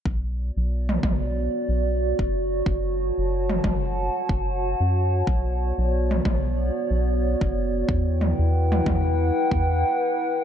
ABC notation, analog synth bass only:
X:1
M:4/4
L:1/16
Q:"Swing 16ths" 1/4=92
K:Bm
V:1 name="Analog synth bass" clef=bass
B,,,3 B,,,3 B,,,3 z B,,,3 F,,,3 | F,,,3 F,,,3 F,,,3 z F,,,3 F,,3 | B,,,3 B,,,3 B,,,3 z B,,,3 F,,,3 | E,,3 E,,3 E,,3 z E,,2 z4 |]